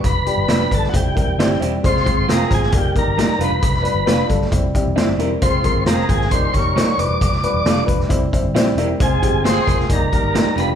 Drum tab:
HH |x-x-x-x-x-x-x-x-|x-x-x-x-x-x-x-x-|x-x-x-x-x-x-x-x-|x-x-x-x-x-x-x-x-|
SD |----o--o----o---|-o--o-oo----o---|-o--o--o----o---|----o--o----o---|
BD |o-----o-o-o-----|o-o---o-o-o-----|o-----o-o-o-----|o-o---o-o-o-----|

HH |x-x-x-x-x-x-x-x-|x-x-x-x-x-x-x-x-|
SD |-o--o--o----o---|----o--o----o---|
BD |o-----o-o-o-----|o-o---o-o-o-----|